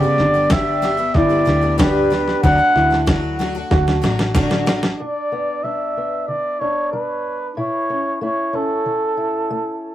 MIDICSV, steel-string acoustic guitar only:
0, 0, Header, 1, 2, 480
1, 0, Start_track
1, 0, Tempo, 641711
1, 1821, Time_signature, 4, 2, 24, 8
1, 7441, End_track
2, 0, Start_track
2, 0, Title_t, "Steel-string acoustic guitar"
2, 0, Program_c, 0, 25
2, 3740, Note_on_c, 0, 43, 51
2, 3745, Note_on_c, 0, 62, 40
2, 3979, Note_on_c, 0, 59, 45
2, 4172, Note_off_c, 0, 43, 0
2, 4214, Note_off_c, 0, 62, 0
2, 4217, Note_on_c, 0, 55, 39
2, 4223, Note_on_c, 0, 62, 36
2, 4458, Note_off_c, 0, 59, 0
2, 4467, Note_on_c, 0, 59, 40
2, 4651, Note_off_c, 0, 55, 0
2, 4697, Note_on_c, 0, 50, 44
2, 4937, Note_off_c, 0, 62, 0
2, 4946, Note_on_c, 0, 62, 40
2, 5132, Note_off_c, 0, 50, 0
2, 5184, Note_on_c, 0, 55, 44
2, 5617, Note_off_c, 0, 55, 0
2, 5639, Note_off_c, 0, 59, 0
2, 5662, Note_off_c, 0, 62, 0
2, 5662, Note_on_c, 0, 45, 56
2, 5665, Note_on_c, 0, 64, 43
2, 5908, Note_on_c, 0, 61, 44
2, 6097, Note_off_c, 0, 45, 0
2, 6143, Note_off_c, 0, 64, 0
2, 6143, Note_on_c, 0, 57, 39
2, 6152, Note_on_c, 0, 64, 37
2, 6372, Note_off_c, 0, 61, 0
2, 6381, Note_on_c, 0, 61, 39
2, 6579, Note_off_c, 0, 57, 0
2, 6624, Note_on_c, 0, 52, 43
2, 6851, Note_off_c, 0, 64, 0
2, 6860, Note_on_c, 0, 64, 45
2, 7061, Note_off_c, 0, 52, 0
2, 7109, Note_on_c, 0, 57, 47
2, 7441, Note_off_c, 0, 57, 0
2, 7441, Note_off_c, 0, 61, 0
2, 7441, Note_off_c, 0, 64, 0
2, 7441, End_track
0, 0, End_of_file